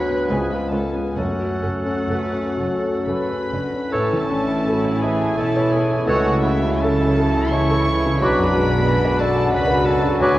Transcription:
Already playing: grand piano D2 F#4 B4, bassoon F#3, french horn section B3 F#4, clarinet D4, flute B4, oboe B4, violin section B5
0.08 grand piano B3
0.28 double bass section C#2, cello section C#2, grand piano C#2, bassoon F3, viola section G#3 C#4, french horn section B3 F4, clarinet C#4, violin section F4 B4 G#5, flute G#4
0.50 grand piano F4, flute B4, violin section B5
0.69 double bass section C#2, cello section C#2, viola section G#3 C#4, violin section F4 B4 A5, grand piano B4
0.74 flute A4
0.93 grand piano C#4, flute G#4, violin section G#5
1.16 double bass section F#1, cello section F#2, grand piano F#2, bassoon F#3, viola section A3 C#4, french horn section A3 F#4, violin section F#4 A4 F#5, flute F#4, oboe A4
1.39 grand piano F#4
1.62 double bass section F#1, cello section F#2, viola section A3 C#4, violin section F#4 A4, grand piano A4
1.85 grand piano C#4
2.08 double bass section F#1, cello section F#2, viola section A3 C#4, grand piano A4, violin section B4
2.33 grand piano C#4
2.57 double bass section F#1, cello section F#2, viola section A3 C#4, grand piano F#4, violin section A4
2.83 grand piano C#4
3.06 double bass section F#1, cello section F#2, viola section A3 C#4, violin section G#4 B5, grand piano A4, trumpet B4
3.29 grand piano C#4
3.52 double bass section F#1, cello section F#2, viola section A3 C#4, grand piano D4, violin section F#4
3.73 grand piano C#4
3.91 double bass section A1, cello section A2, grand piano A2, bassoon E3, viola section A3 C#4, french horn section C#4 E4, violin section E4 A5, clarinet A4, trumpet A4, oboe C#5, flute E6
4.13 grand piano E3
4.28 grand piano C#4, violin section D4
4.48 grand piano E4
4.64 viola section F#3 E4, violin section C#4, grand piano A4
4.85 grand piano C#5
5.02 viola section E3, trumpet G#4, grand piano E5, violin section G#5
5.21 grand piano A5
5.36 double bass section B1, cello section B2, viola section E3 E4, violin section C#4 A5, trumpet A4, grand piano E5
5.56 grand piano C#5
5.71 trumpet G#4, grand piano A4, violin section G#5
5.91 grand piano E4
6.06 grand piano C#2, double bass section C#2, cello section C#3, bassoon E3, viola section A3 C#4, trumpet F#4, violin section F#4 A4 F#5, clarinet A4, oboe C#5, flute E6
6.26 grand piano C#3
6.43 trumpet E4, grand piano E4, violin section E5
6.65 grand piano C#3
6.81 viola section F#3 C#4, violin section E4 A4 A5, trumpet A4, grand piano A4
7.01 grand piano E5
7.19 grand piano A4
7.34 grand piano A5
7.51 viola section E3 E4, violin section G#4 C#6, trumpet C#5, grand piano E5
7.70 grand piano A4
7.86 viola section E3, grand piano E4
8.06 grand piano C#3
8.19 double bass section B1, grand piano B1, cello section B2, bassoon F#3, viola section F#3 D4, violin section D4 B5, clarinet F#4, french horn section F#4, trumpet B4, flute D6
8.24 french horn section D4, oboe B4
8.38 grand piano F#2
8.55 viola section G#3, grand piano B3
8.72 grand piano D4
8.88 viola section G#3, grand piano F#4
9.05 grand piano B4
9.20 trumpet A4, grand piano D5, violin section A5
9.37 grand piano F#5
9.52 double bass section C#2, cello section C#3, viola section F#3 C#4, violin section F#4 B5, trumpet B4, grand piano D5
9.67 grand piano B4
9.83 grand piano F#4, trumpet A4, violin section A5
10.02 grand piano D4
10.18 grand piano D2, double bass section D2, cello section D3, bassoon F#3, viola section B3, clarinet F#4, violin section F#4 G#5, trumpet G#4, oboe B4, flute D6

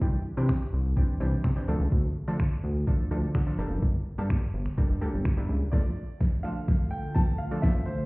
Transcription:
0.01 analog synth bass C2, synth pluck E3 C4 D4 G4, kick
0.37 analog synth bass C3, synth pluck E3 C4 D4 G4
0.49 finger snap, kick
0.73 analog synth bass C2
0.96 synth pluck E3 C4 D4 G4, kick
1.20 analog synth bass C2, synth pluck E3 C4 D4 G4
1.44 analog synth bass C3, finger snap, kick
1.56 synth pluck E3 C4 D4 G4
1.68 analog synth bass D2, synth pluck F3 A3 D4 A4
1.80 analog synth bass C#2
1.92 analog synth bass D2, kick
2.28 analog synth bass D3, synth pluck F3 A3 D4 A4
2.40 finger snap, kick
2.63 analog synth bass D2
2.87 synth pluck F3 A3 D4 A4, kick
3.11 analog synth bass D2, synth pluck F3 A3 D4 A4
3.35 analog synth bass D3, finger snap, kick
3.47 synth pluck F3 A3 D4 A4
3.58 analog synth bass G1, synth pluck G3 A#3 D4 A4
3.71 analog synth bass F#1
3.82 analog synth bass G1, kick
4.18 analog synth bass G2, synth pluck G3 A#3 D4 A4
4.30 finger snap, kick
4.54 analog synth bass G1
4.66 finger snap
4.78 synth pluck G3 A#3 D4 A4, kick
4.90 analog synth bass G1
5.01 analog synth bass D2, synth pluck G3 A#3 D4 A4
5.13 analog synth bass G1
5.25 finger snap, kick
5.37 analog synth bass G1, synth pluck G3 A#3 D4 E4
5.49 analog synth bass C#2
5.72 ambient pad D2 D3 A3 F4 A4, synth pluck F3 A3 D4 A4, grand piano D5, kick, snare
6.21 kick, snare
6.43 synth pluck F3 A3 D4 A4, grand piano F5
6.68 kick, snare
6.91 grand piano G5
7.15 grand piano A5, kick, snare
7.38 grand piano F5
7.51 synth pluck F3 A3 D4 A4
7.62 ambient pad C2 C3 D4 E4 G4, synth pluck E3 C4 D4 G4, grand piano E5, kick, snare
7.86 grand piano C5

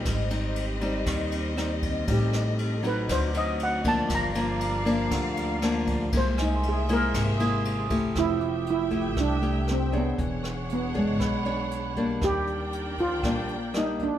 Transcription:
Already playing: nylon-string guitar G3 C4 D#4, string section G4 D#5
0.05 upright bass G#1, nylon-string guitar G#2, string section C4 C5, kick, cross-stick, ride
0.30 nylon-string guitar G3 C4 D#4, ride
0.56 ride
0.81 nylon-string guitar G3 C4 D#4, ride
1.06 upright bass D#2, nylon-string guitar D#3, kick, cross-stick, ride
1.32 ride
1.57 nylon-string guitar G3 C4 D#4, cross-stick, ride
1.83 kick, ride
2.08 upright bass A1, nylon-string guitar A2 G3 C4 D#4, string section A4, kick, ride
2.12 steel pan G4
2.33 cross-stick, ride
2.59 ride
2.83 nylon-string guitar F#3 C4 D#4, ride
2.87 steel pan B4
3.08 upright bass D2, nylon-string guitar D3, string section F#4 D5, steel pan C5, kick, cross-stick, ride
3.34 nylon-string guitar F#3 C4 D#4, steel pan D#5, ride
3.60 steel pan F#5, ride
3.84 nylon-string guitar F3 A#3 D4, steel pan A5, kick, ride
4.10 upright bass G1, nylon-string guitar G2, string section A#3 G4 F5, kick, cross-stick, ride
4.15 steel pan A#5
4.35 nylon-string guitar F3 A#3 D4, vibraphone A#5, ride
4.61 ride
4.85 nylon-string guitar F3 A#3 D4, ride
5.11 upright bass D2, nylon-string guitar D3, kick, cross-stick, ride
5.37 ride
5.62 nylon-string guitar F3 A#3 D4, cross-stick, ride
5.87 kick, ride
6.13 upright bass C2, nylon-string guitar C3 G#3 A#3 E4, string section G#4 C5 E5, kick, ride
6.17 steel pan C5
6.38 vibraphone G#5, cross-stick, ride
6.42 steel pan D#4
6.55 vibraphone C6
6.63 ride
6.69 steel pan G#4
6.73 vibraphone D#6
6.89 nylon-string guitar G#3 A#3 E4, ride
6.93 steel pan A#4
7.14 upright bass G#1, nylon-string guitar C3, kick, cross-stick, ride
7.38 nylon-string guitar G#3 A#3 E4, vibraphone D#6, ride
7.65 ride
7.90 nylon-string guitar A3 E4 G4, kick, ride
8.15 upright bass F1, nylon-string guitar F3, string section A3 G4 E5 G5, steel pan E4, kick, cross-stick, closed hi-hat
8.40 vibraphone D6, closed hi-hat
8.66 closed hi-hat
8.70 steel pan E4
8.91 nylon-string guitar A3 E4 G4, kick, closed hi-hat
9.17 upright bass C2, nylon-string guitar C3, steel pan D4, kick, cross-stick, closed hi-hat
9.42 nylon-string guitar A3 E4 G4, closed hi-hat
9.68 steel pan C4, cross-stick, closed hi-hat
9.93 nylon-string guitar D4 G#4 C#5, kick, closed hi-hat
9.97 steel pan B3
10.18 upright bass E1, nylon-string guitar E3, string section D4 G#4 C#5 F#5, kick, closed hi-hat
10.43 vibraphone C#6, cross-stick, closed hi-hat
10.69 steel pan B3, closed hi-hat
10.94 steel pan G#3, nylon-string guitar D4 G#4 C#5, kick, closed hi-hat
11.19 upright bass B1, nylon-string guitar B2, vibraphone B5, kick, cross-stick, closed hi-hat
11.45 nylon-string guitar D4 G#4 C#5, closed hi-hat
11.71 closed hi-hat
11.96 nylon-string guitar G3 A#3 D4, kick, closed hi-hat
12.22 upright bass D#2, nylon-string guitar D#3, string section D4 A#4 D5 G5, steel pan G4, kick, cross-stick, closed hi-hat
12.47 closed hi-hat
12.73 closed hi-hat
12.98 steel pan F4, kick, closed hi-hat
13.23 upright bass A#1, nylon-string guitar A#2 G3 A#3 D4, kick, cross-stick, closed hi-hat
13.49 closed hi-hat
13.74 nylon-string guitar G3 A#3 D4, steel pan D#4, cross-stick, closed hi-hat
13.99 steel pan D4, kick, closed hi-hat

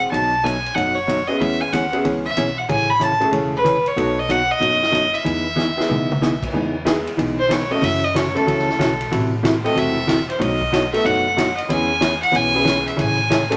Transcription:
Already playing: upright piano C4 E4 F#4 G#4, fiddle F#5
0.11 upright bass B1, hollow-body jazz guitar B2 F#3 A3 D#4 F#4, fiddle A5, kick, ride
0.43 hollow-body jazz guitar B2 F#3 A3 D#4 F#4, fiddle G#5, kick, hi-hat pedal, ride
0.66 ride
0.74 upright bass F#1, hollow-body jazz guitar B2 F#3 A3 D#4 F#4, fiddle F#5, kick, ride
0.94 fiddle C#5
1.08 hollow-body jazz guitar B2 F#3 A3 D#4 F#4, kick, hi-hat pedal, ride
1.27 upright piano B3 C#4 E4 G#4, fiddle D#5
1.40 upright bass E2, hollow-body jazz guitar E3 B3 C#4 G#4, fiddle E5, kick, ride
1.61 fiddle G#5
1.72 upright bass D#2, hollow-body jazz guitar E3 B3 C#4 G#4, fiddle F#5, kick, hi-hat pedal, ride
1.92 upright piano B3 C#4 E4 G#4, ride
2.04 upright bass C#2, hollow-body jazz guitar E3 B3 C#4 G#4, kick, ride
2.26 fiddle E5
2.37 upright bass B1, hollow-body jazz guitar E3 B3 C#4 G#4, kick, hi-hat pedal, ride
2.58 fiddle F#5
2.69 upright bass A1, hollow-body jazz guitar C#3 E3 A3 C#4 G#4, fiddle G#5, kick, ride
2.89 fiddle B5
3.00 hollow-body jazz guitar C#3 E3 A3 C#4 G#4, fiddle A5, kick, hi-hat pedal, ride
3.20 upright piano A3 C#4 E4 G#4, ride
3.32 upright bass E1, hollow-body jazz guitar C#3 E3 A3 C#4 G#4, kick, ride
3.57 fiddle B4
3.64 hollow-body jazz guitar C#3 E3 A3 C#4 G#4, kick, hi-hat pedal, ride
3.86 fiddle C#5, ride
3.96 upright bass B1, hollow-body jazz guitar B2 F#3 A3 D#4 F#4, upright piano B3 D#4 F#4 A4, kick, ride
4.19 fiddle D#5
4.29 hollow-body jazz guitar B2 F#3 A3 D#4 F#4, fiddle F#5, kick, hi-hat pedal, ride
4.51 fiddle D#5
4.60 upright bass F#1, hollow-body jazz guitar B2 F#3 A3 D#4 F#4, kick, ride
4.83 snare
4.92 hollow-body jazz guitar B2 F#3 A3 D#4 F#4, kick, hi-hat pedal, ride
5.14 fiddle E5, ride
5.24 upright bass E2, hollow-body jazz guitar E3 B3 D#4 G#4, kick, ride
5.56 hollow-body jazz guitar E3 B3 D#4 G#4, snare, hi-hat pedal
5.77 upright piano B3 D#4 E4 G#4, snare
5.89 upright bass B1, hollow-body jazz guitar E3 B3 D#4 G#4, mid tom
6.12 mid tom
6.22 hollow-body jazz guitar E3 B3 D#4 G#4, snare, hi-hat pedal
6.43 kick, crash
6.54 upright bass E2, hollow-body jazz guitar E3 B3 D#4 G#4, kick
6.85 hollow-body jazz guitar E3 B3 D#4 G#4, upright piano G#3 B3 D#4 E4 G#4, kick, snare, hi-hat pedal, ride
7.07 ride
7.17 upright bass B1, hollow-body jazz guitar E3 B3 D#4 G#4, kick, ride
7.39 fiddle C5
7.49 hollow-body jazz guitar E3 B3 D#4 G#4, fiddle C#5, kick, snare, hi-hat pedal, ride
7.71 upright piano A3 C#4 E4 F#4 A4, fiddle D#5
7.82 upright bass F#2, hollow-body jazz guitar C#3 E3 A3 C#4 F#4, fiddle E5, kick, ride
8.04 fiddle D#5
8.15 hollow-body jazz guitar C#3 E3 A3 C#4 F#4, fiddle C#5, kick, snare, hi-hat pedal, ride
8.35 upright piano A3 C#4 E4 F#4 A4, fiddle A4, ride
8.46 upright bass C#2, hollow-body jazz guitar C#3 E3 A3 C#4 F#4, kick, ride
8.59 snare
8.69 snare
8.79 upright bass B1, hollow-body jazz guitar C#3 E3 A3 C#4 F#4, kick, snare, hi-hat pedal, ride
9.01 ride
9.12 upright bass A1, hollow-body jazz guitar C3 E3 A3 E4 F#4, kick, ride
9.43 hollow-body jazz guitar C3 E3 A3 E4 F#4, kick, snare, hi-hat pedal, ride
9.64 upright piano A3 C4 E4 F#4 A4, fiddle D#5, ride
9.75 upright bass E1, hollow-body jazz guitar C3 E3 A3 E4 F#4, fiddle E5, kick, ride
10.07 hollow-body jazz guitar C3 E3 A3 E4 F#4, kick, snare, hi-hat pedal, ride
10.30 fiddle C5, ride
10.39 upright bass B1, hollow-body jazz guitar B2 F#3 A3 D#4 F#4, fiddle D#5, kick, ride
10.62 kick
10.72 hollow-body jazz guitar B2 F#3 A3 D#4 F#4, kick, snare, hi-hat pedal, ride
10.93 upright piano A3 B3 D#4 F#4 A4, fiddle E5, ride
11.04 upright bass F#1, hollow-body jazz guitar B2 F#3 A3 D#4 F#4, fiddle F#5, kick, ride
11.37 hollow-body jazz guitar B2 F#3 A3 D#4 F#4, kick, snare, hi-hat pedal, ride
11.57 fiddle D#5, ride
11.68 upright bass E2, hollow-body jazz guitar E3 B3 C#4 G#4, upright piano B3 C#4 E4 G#4 B4, fiddle G#5, kick, ride
12.01 hollow-body jazz guitar E3 B3 C#4 G#4, kick, snare, hi-hat pedal, ride
12.22 fiddle F#5, ride
12.32 upright bass B1, hollow-body jazz guitar E3 B3 C#4 G#4, kick, ride
12.36 fiddle G#5
12.54 upright piano B3 C#4 E4 G#4 B4
12.65 hollow-body jazz guitar E3 B3 C#4 G#4, kick, snare, hi-hat pedal, ride
12.87 fiddle E5, ride
12.97 upright bass A1, hollow-body jazz guitar C#3 E3 A3 C#4 G#4, fiddle G#5, kick, ride
13.30 hollow-body jazz guitar C#3 E3 A3 C#4 G#4, kick, snare, hi-hat pedal, ride
13.50 upright piano A3 C#4 E4 G#4 A4, ride

